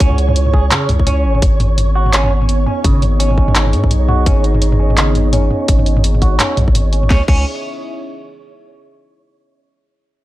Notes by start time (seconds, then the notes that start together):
Already playing: C#4 E4 G#4 C#5 E5
0.00 C#2 C#4, kick, closed hi-hat
0.11 mid tom
0.18 closed hi-hat
0.29 mid tom
0.36 closed hi-hat
0.46 mid tom
0.54 G#4, kick
0.71 C#3, clap, closed hi-hat, mid tom
0.89 C#2, closed hi-hat, mid tom
1.00 kick
1.07 C#4, closed hi-hat, mid tom
1.25 G#1
1.35 mid tom
1.42 G#1 B3, kick, closed hi-hat, mid tom
1.60 closed hi-hat, mid tom
1.69 D#4
1.78 closed hi-hat, mid tom
1.95 F#4
2.06 mid tom
2.10 G#1 C#4 D#5, clap, closed hi-hat
2.21 G#4, mid tom
2.42 mid tom
2.49 closed hi-hat
2.66 C#4, mid tom
2.84 G#1 C#3, kick, closed hi-hat, mid tom
3.02 closed hi-hat, mid tom
3.20 C#4, closed hi-hat
3.31 mid tom
3.38 kick
3.48 mid tom
3.55 clap, closed hi-hat
3.66 mid tom
3.73 G#2, closed hi-hat
3.84 kick
3.91 B1, closed hi-hat, mid tom
4.08 B1 F#4, mid tom
4.26 G#1 C#4, kick, closed hi-hat, mid tom
4.44 closed hi-hat
4.54 mid tom
4.62 closed hi-hat
4.72 mid tom
4.80 C#4
4.90 mid tom
4.97 G#1 C#3, clap, closed hi-hat
5.15 closed hi-hat, mid tom
5.33 C#4, closed hi-hat, mid tom
5.51 mid tom
5.68 G#1, kick, closed hi-hat
5.79 mid tom
5.86 closed hi-hat
5.97 mid tom
6.04 closed hi-hat
6.14 mid tom
6.22 F#4, kick, closed hi-hat
6.40 C#4, clap, closed hi-hat, mid tom
6.57 B1, closed hi-hat, mid tom
6.68 G#1, kick
6.75 closed hi-hat, mid tom
6.93 C#4, closed hi-hat
7.03 mid tom
7.10 C#2 C#4, kick, snare
7.16 E4
7.22 G#4
7.27 C#2 C#4 E5, kick, crash